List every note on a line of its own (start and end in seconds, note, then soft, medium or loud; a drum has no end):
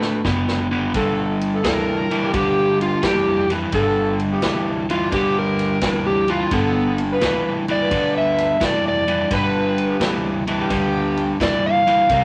0.00 0.16 A2 loud
0.00 0.20 D3 medium
0.00 0.20 A3 loud
0.00 0.23 E4 medium
0.00 0.23 F#4 medium
0.00 0.24 B4 medium
0.00 snare medium
0.25 0.95 F#1 medium
0.25 0.67 D3 medium
0.25 0.67 B3 loud
0.25 kick medium
0.25 snare medium
0.48 snare medium
0.71 0.92 D3 medium
0.71 0.92 B3 medium
0.94 1.56 G1 medium
0.94 1.60 G2 medium
0.94 1.60 D3 medium
0.94 1.37 B3 medium
0.94 1.37 F4 medium
0.94 1.38 A4 medium
0.94 kick loud
0.94 snare soft
0.94 ride medium
1.41 ride medium
1.52 1.97 B3 medium
1.52 1.97 F4 medium
1.52 1.98 A4 medium
1.64 2.25 D2 medium
1.64 2.06 G2 medium
1.64 2.06 E3 medium
1.64 2.32 A#4 medium
1.64 snare loud
1.64 ride medium
2.11 2.31 G2 medium
2.11 2.32 E3 medium
2.11 ride medium
2.23 3.01 B3 medium
2.23 3.02 F4 medium
2.23 3.02 G4 medium
2.33 2.94 D2 medium
2.33 2.99 G2 medium
2.33 2.99 D3 medium
2.33 2.79 G4 medium
2.33 kick loud
2.33 ride medium
2.81 3.04 F4 medium
2.81 ride medium
3.03 3.64 F2 medium
3.03 3.45 G2 medium
3.03 3.46 E3 medium
3.03 3.49 G4 loud
3.03 kick medium
3.03 snare loud
3.03 ride medium
3.50 3.71 G2 medium
3.50 3.71 E3 medium
3.50 snare soft
3.50 ride medium
3.72 4.34 G1 medium
3.72 4.38 G2 medium
3.72 4.38 D3 medium
3.72 4.15 B3 medium
3.72 4.16 F4 medium
3.72 4.16 A4 loud
3.72 kick loud
3.72 ride medium
4.20 ride medium
4.31 4.76 B3 medium
4.31 4.76 F4 medium
4.31 4.77 G4 medium
4.42 5.04 D2 medium
4.42 4.85 G2 medium
4.42 4.85 E3 medium
4.42 snare loud
4.42 ride medium
4.90 5.10 G2 medium
4.90 5.10 E3 medium
4.90 5.13 F4 medium
4.90 ride medium
5.01 5.80 B3 medium
5.01 5.80 F4 medium
5.01 5.81 G4 medium
5.12 5.73 D2 medium
5.12 5.77 G2 medium
5.12 5.77 D3 medium
5.12 5.36 G4 medium
5.12 kick loud
5.12 snare soft
5.12 ride medium
5.39 6.05 A#4 medium
5.59 snare soft
5.59 ride medium
5.81 6.43 D2 medium
5.81 6.24 G2 medium
5.81 6.24 E3 medium
5.81 kick medium
5.81 snare loud
5.81 ride medium
6.06 6.28 G4 medium
6.28 6.49 G2 medium
6.28 6.50 E3 medium
6.28 6.52 F4 medium
6.28 ride medium
6.51 7.13 G1 medium
6.51 7.17 G2 medium
6.51 7.17 D3 medium
6.51 6.94 B3 medium
6.51 6.98 B3 medium
6.51 6.95 F4 medium
6.51 6.95 A4 medium
6.51 kick loud
6.51 snare soft
6.51 ride medium
6.98 ride medium
7.10 7.54 B3 medium
7.10 7.55 F4 medium
7.10 7.56 B4 loud
7.21 7.83 D2 medium
7.21 7.64 G2 medium
7.21 7.64 E3 medium
7.21 snare loud
7.21 ride medium
7.68 7.89 G2 medium
7.68 7.89 E3 medium
7.68 8.15 D5 medium
7.68 ride medium
7.80 8.59 B3 medium
7.80 8.59 F4 medium
7.80 8.60 B4 medium
7.91 8.52 D2 medium
7.91 8.56 G2 medium
7.91 8.57 D3 loud
7.91 kick loud
7.91 ride medium
8.18 8.61 E5 medium
8.38 snare soft
8.38 ride medium
8.60 9.22 F2 medium
8.60 9.03 G2 medium
8.60 9.03 E3 medium
8.60 kick medium
8.60 snare loud
8.60 ride medium
8.65 8.86 D5 medium
8.88 9.31 D5 medium
9.07 9.28 G2 medium
9.07 9.29 E3 medium
9.07 ride medium
9.30 9.92 G1 medium
9.30 9.96 G2 medium
9.30 9.96 D3 medium
9.30 9.73 B3 medium
9.30 9.73 F4 medium
9.30 9.74 B4 medium
9.30 kick loud
9.30 snare soft
9.30 ride medium
9.35 10.01 B4 loud
9.78 ride medium
9.88 10.33 B3 medium
9.88 10.34 F4 medium
9.88 10.34 G4 medium
10.00 10.61 D2 medium
10.00 10.43 G2 medium
10.00 10.43 E3 medium
10.00 snare loud
10.00 ride medium
10.47 10.68 G2 medium
10.47 10.68 E3 medium
10.47 ride medium
10.59 11.38 B3 medium
10.59 11.38 F4 medium
10.59 11.39 G4 loud
10.70 11.31 D2 loud
10.70 11.35 G2 medium
10.70 11.36 D3 medium
10.70 kick loud
10.70 snare soft
10.70 ride medium
11.17 ride medium
11.40 12.01 D2 medium
11.40 11.82 G2 medium
11.40 11.82 E3 medium
11.40 11.64 D5 loud
11.40 kick medium
11.40 snare loud
11.40 ride medium
11.66 12.24 F5 loud
11.86 12.07 G2 medium
11.86 12.07 E3 medium
11.86 snare soft
11.86 ride medium
12.09 12.24 C2 medium
12.09 12.24 C3 medium
12.09 12.24 G3 loud
12.09 12.24 D4 medium
12.09 12.24 E4 medium
12.09 12.24 A#4 medium
12.09 kick loud
12.09 snare soft
12.09 ride medium